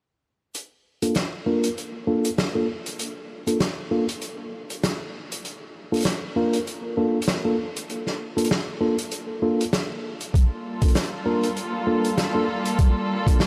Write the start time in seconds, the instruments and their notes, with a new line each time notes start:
0.54 closed hi-hat
1.02 tine electric piano A#3 D4 F4 A4, closed hi-hat
1.15 snare, closed hi-hat
1.46 tine electric piano A#3 D4 F4 A#4
1.64 closed hi-hat
1.78 closed hi-hat
2.07 tine electric piano A#3 D4 F4 A4
2.25 closed hi-hat
2.38 snare, closed hi-hat
2.55 tine electric piano A#3 D4 F4 A4
2.86 closed hi-hat
2.99 closed hi-hat
3.47 tine electric piano A#3 D4 F4 A4, closed hi-hat
3.60 snare, closed hi-hat
3.91 tine electric piano A#3 D4 F4 A4
4.09 closed hi-hat
4.21 closed hi-hat
4.70 closed hi-hat
4.83 snare, closed hi-hat
5.32 closed hi-hat
5.45 closed hi-hat
5.92 tine electric piano A#3 D4 F4 A4, closed hi-hat
5.96 closed hi-hat
6.00 closed hi-hat
6.03 closed hi-hat
6.05 snare, closed hi-hat
6.36 tine electric piano A#3 D4 F4 A#4
6.53 closed hi-hat
6.67 closed hi-hat
6.97 tine electric piano A#3 D4 F4 A4
7.22 closed hi-hat
7.28 snare, closed hi-hat
7.45 tine electric piano A#3 D4 F4 A4
7.76 closed hi-hat
7.90 closed hi-hat
8.07 snare
8.37 tine electric piano A#3 D4 F4 A4, closed hi-hat
8.44 closed hi-hat
8.51 snare
8.81 tine electric piano A#3 D4 F4 A4
8.98 closed hi-hat
9.11 closed hi-hat
9.42 tine electric piano A#3 D4 F4 A4
9.61 closed hi-hat
9.73 snare, closed hi-hat
10.21 closed hi-hat
10.34 string section G3 A#3 F4 A4, kick, closed hi-hat
10.82 tine electric piano A#3 D4 F4 A4, kick, closed hi-hat
10.88 closed hi-hat
10.95 snare, closed hi-hat
11.03 closed hi-hat
11.26 tine electric piano A#3 D4 F4 A#4
11.43 closed hi-hat
11.56 closed hi-hat
11.87 tine electric piano A#3 D4 F4 A4
12.04 closed hi-hat
12.18 snare, closed hi-hat
12.35 tine electric piano A#3 D4 F4 A4
12.65 closed hi-hat
12.78 kick, closed hi-hat
13.26 tine electric piano A#3 D4 F4 A4, kick, closed hi-hat
13.40 snare, closed hi-hat